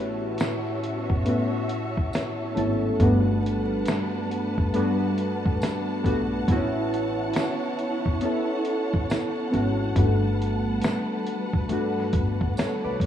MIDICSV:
0, 0, Header, 1, 5, 480
1, 0, Start_track
1, 0, Tempo, 869565
1, 1657, Time_signature, 4, 2, 24, 8
1, 7211, End_track
2, 0, Start_track
2, 0, Title_t, "String section"
2, 0, Program_c, 0, 48
2, 0, Note_on_c, 0, 66, 81
2, 0, Note_on_c, 0, 73, 68
2, 0, Note_on_c, 0, 76, 72
2, 0, Note_on_c, 0, 81, 80
2, 1636, Note_off_c, 0, 66, 0
2, 1637, Note_off_c, 0, 76, 0
2, 1638, Note_off_c, 0, 73, 0
2, 1660, Note_on_c, 0, 78, 69
2, 1661, Note_on_c, 0, 55, 76
2, 1661, Note_on_c, 0, 71, 66
2, 3560, Note_off_c, 0, 55, 0
2, 3560, Note_off_c, 0, 71, 0
2, 3578, Note_on_c, 0, 64, 72
2, 3579, Note_on_c, 0, 73, 76
2, 5478, Note_off_c, 0, 64, 0
2, 5479, Note_off_c, 0, 73, 0
2, 5507, Note_on_c, 0, 55, 69
2, 5508, Note_on_c, 0, 71, 64
2, 7211, Note_off_c, 0, 55, 0
2, 7211, Note_off_c, 0, 71, 0
2, 7211, Note_off_c, 0, 78, 0
2, 7211, Note_off_c, 0, 81, 0
2, 7211, End_track
3, 0, Start_track
3, 0, Title_t, "Synth keys"
3, 0, Program_c, 1, 88
3, 0, Control_c, 1, 64, 127
3, 0, Note_on_c, 1, 45, 75
3, 0, Note_on_c, 1, 59, 75
3, 0, Note_on_c, 1, 61, 62
3, 0, Note_on_c, 1, 64, 71
3, 0, Note_on_c, 1, 66, 101
3, 0, Note_on_c, 1, 67, 55
3, 0, Note_on_c, 1, 71, 67
3, 603, Note_off_c, 1, 45, 0
3, 605, Note_off_c, 1, 59, 0
3, 608, Note_off_c, 1, 61, 0
3, 611, Note_off_c, 1, 64, 0
3, 614, Note_off_c, 1, 66, 0
3, 691, Note_on_c, 1, 45, 73
3, 695, Note_on_c, 1, 59, 72
3, 700, Note_on_c, 1, 61, 62
3, 705, Note_on_c, 1, 64, 64
3, 710, Note_on_c, 1, 66, 90
3, 1348, Note_off_c, 1, 45, 0
3, 1350, Note_off_c, 1, 59, 0
3, 1352, Note_off_c, 1, 61, 0
3, 1355, Note_off_c, 1, 64, 0
3, 1357, Note_off_c, 1, 66, 0
3, 1406, Note_on_c, 1, 57, 72
3, 1410, Note_on_c, 1, 59, 60
3, 1414, Note_on_c, 1, 61, 68
3, 1420, Note_on_c, 1, 64, 60
3, 1424, Note_on_c, 1, 69, 86
3, 1630, Note_off_c, 1, 57, 0
3, 1631, Note_off_c, 1, 59, 0
3, 1633, Note_off_c, 1, 61, 0
3, 1636, Note_off_c, 1, 64, 0
3, 1638, Note_off_c, 1, 69, 0
3, 1653, Note_on_c, 1, 43, 85
3, 1656, Note_on_c, 1, 57, 80
3, 1661, Note_on_c, 1, 59, 83
3, 1664, Control_c, 1, 64, 0
3, 1665, Note_on_c, 1, 62, 76
3, 1668, Note_off_c, 1, 71, 0
3, 1669, Note_off_c, 1, 67, 0
3, 1671, Note_on_c, 1, 66, 88
3, 1767, Control_c, 1, 64, 127
3, 2526, Note_off_c, 1, 43, 0
3, 2528, Note_off_c, 1, 57, 0
3, 2530, Note_off_c, 1, 59, 0
3, 2532, Note_off_c, 1, 62, 0
3, 2535, Note_off_c, 1, 66, 0
3, 2610, Note_on_c, 1, 43, 78
3, 2614, Note_on_c, 1, 57, 69
3, 2620, Note_on_c, 1, 59, 82
3, 2625, Note_on_c, 1, 62, 68
3, 2630, Note_on_c, 1, 66, 85
3, 3267, Note_off_c, 1, 43, 0
3, 3269, Note_off_c, 1, 57, 0
3, 3272, Note_off_c, 1, 59, 0
3, 3275, Note_off_c, 1, 62, 0
3, 3277, Note_off_c, 1, 66, 0
3, 3329, Note_on_c, 1, 43, 75
3, 3334, Note_on_c, 1, 57, 62
3, 3341, Note_on_c, 1, 59, 62
3, 3343, Note_on_c, 1, 62, 56
3, 3349, Note_on_c, 1, 66, 94
3, 3551, Note_off_c, 1, 43, 0
3, 3554, Note_off_c, 1, 57, 0
3, 3557, Note_off_c, 1, 59, 0
3, 3558, Note_off_c, 1, 62, 0
3, 3561, Note_off_c, 1, 66, 0
3, 3580, Note_on_c, 1, 59, 88
3, 3583, Control_c, 1, 64, 0
3, 3586, Note_on_c, 1, 60, 55
3, 3594, Note_on_c, 1, 64, 77
3, 3600, Note_on_c, 1, 66, 87
3, 3624, Note_on_c, 1, 61, 71
3, 3627, Note_off_c, 1, 60, 0
3, 3684, Control_c, 1, 64, 127
3, 4449, Note_off_c, 1, 59, 0
3, 4456, Note_off_c, 1, 64, 0
3, 4459, Note_off_c, 1, 66, 0
3, 4471, Note_off_c, 1, 61, 0
3, 4535, Note_on_c, 1, 59, 80
3, 4540, Note_on_c, 1, 61, 69
3, 4549, Note_on_c, 1, 64, 71
3, 4554, Note_on_c, 1, 69, 78
3, 5190, Note_off_c, 1, 59, 0
3, 5192, Note_off_c, 1, 61, 0
3, 5197, Note_off_c, 1, 64, 0
3, 5199, Note_off_c, 1, 69, 0
3, 5250, Note_on_c, 1, 59, 72
3, 5256, Note_on_c, 1, 61, 73
3, 5264, Note_on_c, 1, 64, 63
3, 5270, Note_on_c, 1, 66, 83
3, 5471, Note_off_c, 1, 59, 0
3, 5474, Note_off_c, 1, 61, 0
3, 5478, Note_off_c, 1, 64, 0
3, 5481, Note_off_c, 1, 66, 0
3, 5494, Note_on_c, 1, 57, 85
3, 5501, Note_on_c, 1, 59, 73
3, 5505, Control_c, 1, 64, 0
3, 5505, Note_on_c, 1, 62, 71
3, 5513, Note_on_c, 1, 66, 80
3, 5617, Control_c, 1, 64, 127
3, 6366, Note_off_c, 1, 57, 0
3, 6370, Note_off_c, 1, 59, 0
3, 6372, Note_off_c, 1, 62, 0
3, 6376, Note_off_c, 1, 66, 0
3, 6452, Note_on_c, 1, 57, 72
3, 6460, Note_on_c, 1, 59, 63
3, 6467, Note_on_c, 1, 62, 69
3, 6472, Note_on_c, 1, 66, 86
3, 6944, Note_on_c, 1, 73, 61
3, 6945, Note_off_c, 1, 66, 0
3, 6946, Note_on_c, 1, 69, 55
3, 7085, Note_off_c, 1, 73, 0
3, 7086, Note_off_c, 1, 69, 0
3, 7088, Note_on_c, 1, 74, 57
3, 7092, Note_on_c, 1, 71, 57
3, 7108, Note_off_c, 1, 57, 0
3, 7112, Note_off_c, 1, 59, 0
3, 7116, Note_off_c, 1, 62, 0
3, 7211, Note_off_c, 1, 71, 0
3, 7211, Note_off_c, 1, 74, 0
3, 7211, End_track
4, 0, Start_track
4, 0, Title_t, "Upright bass"
4, 0, Program_c, 2, 32
4, 0, Note_on_c, 2, 33, 98
4, 196, Note_off_c, 2, 33, 0
4, 607, Note_on_c, 2, 30, 72
4, 688, Note_off_c, 2, 30, 0
4, 1091, Note_on_c, 2, 33, 72
4, 1170, Note_off_c, 2, 33, 0
4, 1416, Note_on_c, 2, 32, 85
4, 1636, Note_off_c, 2, 32, 0
4, 1656, Note_on_c, 2, 31, 97
4, 2114, Note_off_c, 2, 31, 0
4, 2529, Note_on_c, 2, 30, 76
4, 2609, Note_off_c, 2, 30, 0
4, 3014, Note_on_c, 2, 33, 80
4, 3092, Note_off_c, 2, 33, 0
4, 3338, Note_on_c, 2, 34, 94
4, 3557, Note_off_c, 2, 34, 0
4, 3580, Note_on_c, 2, 33, 90
4, 4036, Note_off_c, 2, 33, 0
4, 4449, Note_on_c, 2, 30, 67
4, 4529, Note_off_c, 2, 30, 0
4, 4935, Note_on_c, 2, 33, 76
4, 5012, Note_off_c, 2, 33, 0
4, 5264, Note_on_c, 2, 32, 95
4, 5480, Note_off_c, 2, 32, 0
4, 5499, Note_on_c, 2, 31, 106
4, 5956, Note_off_c, 2, 31, 0
4, 6370, Note_on_c, 2, 31, 71
4, 6450, Note_off_c, 2, 31, 0
4, 6459, Note_on_c, 2, 43, 82
4, 6699, Note_on_c, 2, 31, 85
4, 6707, Note_off_c, 2, 43, 0
4, 6917, Note_off_c, 2, 31, 0
4, 7091, Note_on_c, 2, 35, 70
4, 7170, Note_off_c, 2, 35, 0
4, 7178, Note_on_c, 2, 34, 90
4, 7211, Note_off_c, 2, 34, 0
4, 7211, End_track
5, 0, Start_track
5, 0, Title_t, "Drums"
5, 209, Note_on_c, 9, 42, 70
5, 220, Note_on_c, 9, 54, 62
5, 225, Note_on_c, 9, 38, 112
5, 264, Note_off_c, 9, 42, 0
5, 275, Note_off_c, 9, 54, 0
5, 280, Note_off_c, 9, 38, 0
5, 462, Note_on_c, 9, 42, 51
5, 517, Note_off_c, 9, 42, 0
5, 606, Note_on_c, 9, 36, 81
5, 661, Note_off_c, 9, 36, 0
5, 694, Note_on_c, 9, 42, 84
5, 750, Note_off_c, 9, 42, 0
5, 935, Note_on_c, 9, 42, 58
5, 990, Note_off_c, 9, 42, 0
5, 1089, Note_on_c, 9, 36, 78
5, 1144, Note_off_c, 9, 36, 0
5, 1177, Note_on_c, 9, 54, 51
5, 1187, Note_on_c, 9, 38, 101
5, 1190, Note_on_c, 9, 42, 80
5, 1232, Note_off_c, 9, 54, 0
5, 1242, Note_off_c, 9, 38, 0
5, 1245, Note_off_c, 9, 42, 0
5, 1420, Note_on_c, 9, 42, 53
5, 1475, Note_off_c, 9, 42, 0
5, 1655, Note_on_c, 9, 36, 99
5, 1656, Note_on_c, 9, 42, 74
5, 1710, Note_off_c, 9, 36, 0
5, 1711, Note_off_c, 9, 42, 0
5, 1911, Note_on_c, 9, 42, 55
5, 1966, Note_off_c, 9, 42, 0
5, 2128, Note_on_c, 9, 42, 82
5, 2139, Note_on_c, 9, 54, 63
5, 2144, Note_on_c, 9, 38, 108
5, 2183, Note_off_c, 9, 42, 0
5, 2195, Note_off_c, 9, 54, 0
5, 2199, Note_off_c, 9, 38, 0
5, 2381, Note_on_c, 9, 42, 57
5, 2437, Note_off_c, 9, 42, 0
5, 2527, Note_on_c, 9, 36, 83
5, 2582, Note_off_c, 9, 36, 0
5, 2616, Note_on_c, 9, 42, 68
5, 2671, Note_off_c, 9, 42, 0
5, 2858, Note_on_c, 9, 42, 63
5, 2914, Note_off_c, 9, 42, 0
5, 3011, Note_on_c, 9, 36, 89
5, 3066, Note_off_c, 9, 36, 0
5, 3100, Note_on_c, 9, 54, 60
5, 3108, Note_on_c, 9, 38, 97
5, 3111, Note_on_c, 9, 42, 78
5, 3155, Note_off_c, 9, 54, 0
5, 3164, Note_off_c, 9, 38, 0
5, 3166, Note_off_c, 9, 42, 0
5, 3336, Note_on_c, 9, 36, 64
5, 3344, Note_on_c, 9, 42, 58
5, 3391, Note_off_c, 9, 36, 0
5, 3399, Note_off_c, 9, 42, 0
5, 3577, Note_on_c, 9, 36, 104
5, 3579, Note_on_c, 9, 42, 65
5, 3632, Note_off_c, 9, 36, 0
5, 3634, Note_off_c, 9, 42, 0
5, 3829, Note_on_c, 9, 42, 56
5, 3885, Note_off_c, 9, 42, 0
5, 4049, Note_on_c, 9, 42, 77
5, 4063, Note_on_c, 9, 54, 63
5, 4064, Note_on_c, 9, 38, 112
5, 4104, Note_off_c, 9, 42, 0
5, 4118, Note_off_c, 9, 54, 0
5, 4120, Note_off_c, 9, 38, 0
5, 4298, Note_on_c, 9, 42, 49
5, 4354, Note_off_c, 9, 42, 0
5, 4447, Note_on_c, 9, 36, 82
5, 4502, Note_off_c, 9, 36, 0
5, 4532, Note_on_c, 9, 42, 72
5, 4587, Note_off_c, 9, 42, 0
5, 4774, Note_on_c, 9, 42, 65
5, 4829, Note_off_c, 9, 42, 0
5, 4932, Note_on_c, 9, 36, 85
5, 4987, Note_off_c, 9, 36, 0
5, 5022, Note_on_c, 9, 54, 58
5, 5030, Note_on_c, 9, 38, 105
5, 5033, Note_on_c, 9, 42, 75
5, 5077, Note_off_c, 9, 54, 0
5, 5086, Note_off_c, 9, 38, 0
5, 5089, Note_off_c, 9, 42, 0
5, 5264, Note_on_c, 9, 42, 50
5, 5319, Note_off_c, 9, 42, 0
5, 5498, Note_on_c, 9, 36, 100
5, 5499, Note_on_c, 9, 42, 73
5, 5553, Note_off_c, 9, 36, 0
5, 5554, Note_off_c, 9, 42, 0
5, 5750, Note_on_c, 9, 42, 57
5, 5805, Note_off_c, 9, 42, 0
5, 5970, Note_on_c, 9, 42, 78
5, 5980, Note_on_c, 9, 54, 54
5, 5986, Note_on_c, 9, 38, 115
5, 6025, Note_off_c, 9, 42, 0
5, 6036, Note_off_c, 9, 54, 0
5, 6041, Note_off_c, 9, 38, 0
5, 6219, Note_on_c, 9, 42, 52
5, 6274, Note_off_c, 9, 42, 0
5, 6367, Note_on_c, 9, 36, 82
5, 6422, Note_off_c, 9, 36, 0
5, 6455, Note_on_c, 9, 42, 78
5, 6510, Note_off_c, 9, 42, 0
5, 6624, Note_on_c, 9, 38, 30
5, 6679, Note_off_c, 9, 38, 0
5, 6695, Note_on_c, 9, 42, 68
5, 6696, Note_on_c, 9, 36, 83
5, 6750, Note_off_c, 9, 42, 0
5, 6752, Note_off_c, 9, 36, 0
5, 6850, Note_on_c, 9, 36, 88
5, 6905, Note_off_c, 9, 36, 0
5, 6939, Note_on_c, 9, 54, 53
5, 6950, Note_on_c, 9, 38, 108
5, 6953, Note_on_c, 9, 42, 72
5, 6994, Note_off_c, 9, 54, 0
5, 7005, Note_off_c, 9, 38, 0
5, 7009, Note_off_c, 9, 42, 0
5, 7175, Note_on_c, 9, 36, 70
5, 7183, Note_on_c, 9, 42, 56
5, 7211, Note_off_c, 9, 36, 0
5, 7211, Note_off_c, 9, 42, 0
5, 7211, End_track
0, 0, End_of_file